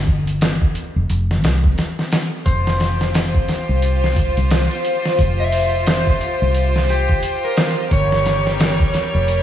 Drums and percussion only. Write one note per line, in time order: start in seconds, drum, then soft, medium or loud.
0.07 kick medium
0.27 closed hi-hat medium
0.41 snare loud
0.41 closed hi-hat medium
0.62 kick medium
0.75 closed hi-hat medium
1.10 closed hi-hat medium
1.31 snare soft
1.44 snare loud
1.44 closed hi-hat medium
1.64 kick medium
1.78 snare medium
1.78 closed hi-hat medium
1.99 snare soft
2.12 snare loud
2.12 closed hi-hat medium
2.46 kick medium
2.46 closed hi-hat medium
2.67 snare soft
2.80 snare medium
2.80 closed hi-hat medium
3.01 snare soft
3.14 snare loud
3.14 closed hi-hat medium
3.35 kick medium
3.48 snare soft
3.48 closed hi-hat medium
3.82 closed hi-hat medium
4.04 snare soft
4.16 kick medium
4.16 closed hi-hat medium
4.37 closed hi-hat soft
4.51 snare loud
4.51 closed hi-hat medium
4.71 closed hi-hat soft
4.85 closed hi-hat medium
5.05 snare soft
5.19 kick loud
5.19 closed hi-hat medium
5.52 open hi-hat medium
5.87 snare loud
5.87 closed hi-hat medium
6.07 kick medium
6.21 closed hi-hat medium
6.55 closed hi-hat medium
6.76 snare soft
6.89 closed hi-hat medium
7.09 kick medium
7.23 closed hi-hat medium
7.57 snare loud
7.57 closed hi-hat medium
7.91 kick loud
7.91 closed hi-hat medium
8.12 snare soft
8.26 snare soft
8.26 closed hi-hat medium
8.47 snare soft
8.60 snare loud
8.60 closed hi-hat medium
8.80 kick medium
8.94 snare soft
8.94 closed hi-hat medium
9.28 closed hi-hat medium